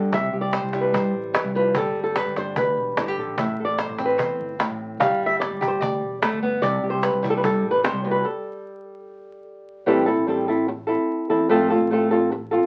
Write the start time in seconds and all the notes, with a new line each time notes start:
Already playing: G2 D3 G3 D4 G4 A4
0.12 C2 C3 E5, cajon bass
0.32 C2 G4, cajon slap
0.41 D5
0.53 C5, cajon slap
0.63 C2
0.73 G3 E4, cajon bass, cajon slap
0.81 B4
0.93 G2 C5, cajon bass
1.14 A1
1.34 E3, cajon bass, cajon slap
1.44 C2
1.55 F3 B4
1.74 G1 G3 A4, cajon bass
1.95 G1, cajon slap
2.04 A4
2.16 B4, cajon slap
2.26 G1
2.36 D4 C5, cajon bass, cajon slap
2.56 D2 B4, cajon bass
2.77 E1
2.97 G1 D3 E4, cajon bass, cajon slap
3.08 G4
3.18 A1 A4
3.38 A1 A2 E5, cajon bass
3.58 A1 A4, cajon slap
3.65 D5
3.78 C5, cajon slap
3.89 A1
3.98 C4, cajon bass, cajon slap
4.05 B4
4.18 E2 C5, cajon bass
4.40 G1
4.59 A2, cajon bass, cajon slap
4.70 A1
5.00 G1 G3 F5, cajon bass
5.21 G1
5.26 E5
5.40 D5, cajon slap
5.51 G1
5.61 G4, cajon bass
5.68 C5
5.81 D2 D5, cajon bass
6.01 E1
6.22 A3, cajon bass, cajon slap
6.32 G1
6.43 B3, cajon slap
6.62 C2 C3 D5, cajon bass
6.83 G4, cajon slap
6.90 C5
7.02 B4, cajon slap
7.13 C2
7.22 G3 E4, cajon bass
7.30 A4
7.37 B4
7.43 G2 A4, cajon bass
7.63 A1
7.71 B4
7.84 C3 C5, cajon bass, cajon slap
7.93 C2
8.05 B2, cajon slap
8.11 B4
8.25 A4
9.86 A1 E3 G3 C4 E4 A4
10.06 C4 E4 A4
10.17 A1
10.27 G3 C4 E4 A4
10.48 C4 E4 A4
10.68 muted nylon-string guitar stroke
10.87 C4 E4 A4
11.30 E2 C4 E4 A4
11.49 A1 F3 A3 C4 F4 A4
11.70 C4 F4 A4
11.80 A1
11.90 A3 C4 F4 A4
12.11 C4 F4 A4
12.31 muted nylon-string guitar stroke
12.51 C4 F4 A4